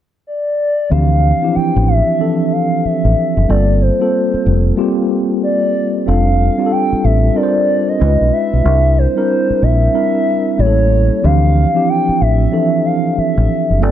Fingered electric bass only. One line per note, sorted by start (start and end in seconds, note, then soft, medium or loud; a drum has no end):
0.92 1.32 D2 medium
1.56 muted fingered electric bass stroke soft
1.76 2.01 A1 medium
2.85 muted fingered electric bass stroke soft
3.05 3.14 A1 medium
3.37 3.46 F#1 medium
3.50 3.90 G1 medium
4.34 muted fingered electric bass stroke soft
4.46 4.71 F1 medium
6.08 6.48 F1 medium
6.93 muted fingered electric bass stroke soft
7.05 7.29 A1 medium
8.01 8.16 C#2 medium
8.21 8.30 B1 medium
8.53 8.62 B1 medium
8.65 9.06 C2 medium
9.50 muted fingered electric bass stroke soft
9.63 9.87 A#1 medium
10.59 11.09 A1 medium
11.24 11.64 D2 medium
12.09 muted fingered electric bass stroke soft
12.22 12.46 A1 medium
13.18 muted fingered electric bass stroke soft
13.38 13.46 A1 medium
13.70 13.83 F#1 medium
13.83 13.91 G1 medium